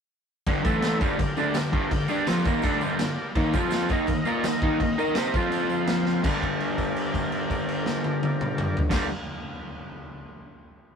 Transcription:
0.46 G2 D3 G3, kick, crash
0.64 A2 E3 A3 E4 A4 E5, kick, tambourine
0.82 snare, tambourine, crash
1.00 G2 D3 G3 G4 A#4 D5, kick, tambourine
1.19 G2 D3, kick, tambourine, crash
1.37 D3 A3 D4, tambourine
1.54 G2 D3, snare, tambourine, crash
1.72 G2 D3 G3, kick
1.91 G2 D3, kick, crash
2.08 G3 D4 G4, tambourine
2.27 F3 C4 F4, snare, tambourine, crash
2.45 D#3 A#3 D#4, kick, tambourine
2.62 D3 A3 D4, kick, tambourine, crash
2.81 G2 D3 G3, tambourine
2.99 G2 D3, snare, tambourine, crash
3.35 D#3 A#3 D#4, kick, crash
3.52 F3 C4 F4 C5 F5, kick, tambourine
3.71 snare, tambourine, crash
3.89 D#3 A#3 D#4 A#4 D#5, kick, tambourine
4.07 D#3 A#3, kick, tambourine, crash
4.25 A#3 F4 A#4, tambourine
4.43 D#3 A#3, snare, tambourine, crash
4.62 D#3 A#3 D#4, kick
4.80 D#3 A#3, kick, tambourine, crash
4.98 D#4 A#4 D#5, tambourine
5.15 C4 G4 C5, snare, tambourine, crash
5.32 F3 F4 C5 F5, kick, tambourine
5.36 C4 F4
5.52 tambourine, crash
5.70 tambourine
5.87 snare, tambourine, crash
6.06 snare, tambourine
6.23 G2 D3 G4 A#4 D5, kick, crash, tambourine
6.27 G3
6.42 kick, crash
6.60 crash
6.78 kick, crash
6.96 crash
7.14 kick, crash
7.32 crash
7.50 kick, crash
7.68 crash
7.86 snare
8.04 high tom
8.23 high tom
8.41 mid tom
8.58 mid tom
8.77 floor tom
8.90 G2 D3 G4 A#4 D5, kick, snare, crash
8.94 G3

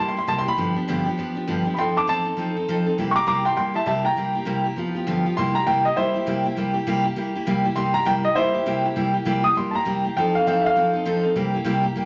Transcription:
Already playing: G3 A#3
0.00 E4 G4
0.08 C6
0.15 A#3 E4 G4 C6
0.27 C3 G3 A#3 E4 G4 A5
0.39 C6
0.45 A#3 E4 G4 B5
0.57 G2 D3 F3 B3 D4 G4
0.76 F3 B3 D4 G4
0.88 G2 D3 F3 B3 D4 G4
1.05 F3 B3 D4 G4
1.18 F3 B3 D4 G4
1.35 F3 B3 D4 G4
1.47 G2 D3 F3 B3 D4 G4
1.65 F3 B3 D4 G4
1.74 F3 C4 B5
1.78 D#4 A4 G5 C6
1.95 C4 D#4 A4 A5 D6
2.07 F3 C4 D#4 A4 A5
2.25 C4 D#4 A4
2.37 F3 C4 D#4 A4
2.57 C4 D#4 A4
2.68 F3 C4 D#4 A4
2.86 C4 D#4 A4
2.98 C3 G3 A#3 E4 G4
3.11 C#6
3.16 A#3 E4 G4 A#5 D6
3.26 C3 G3 A#3 E4 G4 A#5 D6
3.45 A#3 E4 G4 G5 C6
3.56 G3 A#3 E4 G4 G5 C6
3.74 A#3 E4 G4 E5 A5
3.86 C3 G3 A#3 E4 G4 E5 A5
4.04 A#3 E4 G4 G5 A#5
4.16 C3 G3 A#3 E4 G4
4.35 A#3 E4 G4
4.45 C3 G3 A#3 E4 G4
4.64 A#3 E4 G4
4.76 F3 B3 F4 G4
4.94 F3 B3 F4 G4
5.07 G2 D3 F3 B3 F4 G4
5.25 F3 B3 F4 G4
5.37 C3 G3 A#3 E4 G4 C6
5.54 A#3 E4 G4 A#5
5.67 C3 G3 A#3 E4 G4 G5
5.85 A#3 E4 G4 D#5
5.96 G3 A#3 E4 G4 C5
6.14 A#3 E4 G4
6.26 C3 G3 A#3 E4 G4
6.44 A#3 E4 G4
6.56 C3 G3 A#3 E4 G4
6.74 A#3 E4 G4
6.87 C3 G3 A#3 E4 G4
7.04 A#3 E4 G4
7.16 G3 A#3 E4 G4
7.35 A#3 E4 G4
7.46 C3 G3 A#3 E4 G4
7.65 A#3 E4 G4
7.76 C3 G3 A#3 E4 G4 C6
7.94 A#3 E4 G4 A#5
8.05 C3 G3 A#3 E4 G4 G5
8.24 A#3 E4 G4 D#5
8.35 G3 A#3 E4 G4 C5
8.54 A#3 E4 G4
8.66 C3 G3 A#3 E4 G4
8.84 A#3 E4 G4
8.96 C3 G3 A#3 E4 G4
9.14 A#3 E4 G4
9.25 C3 G3 A#3 E4 G4
9.43 A#3 E4 G4 D#6
9.55 G3 A#3 E4 G4 C6
9.71 E4 G4 A5
9.75 A#3 A#5
9.85 C3 G3 A#3 E4 G4
10.04 A#3 E4 G4
10.17 F3 C4 D#4 A4 G5
10.35 C4 D#4 A4 F5
10.47 F3 C4 D#4 A4 F5
10.62 A4 E5
10.66 C4 D#4 F5
10.76 F3 C4 D#4 A4
10.93 C4 D#4 A4
11.05 F3 C4 D#4 A4
11.23 C4 D#4 A4
11.36 C3 G3 A#3 E4 G4
11.54 A#3 E4 G4
11.64 C3 G3 A#3 E4 G4
11.84 A#3 E4 G4
11.95 G3 A#3 E4 G4

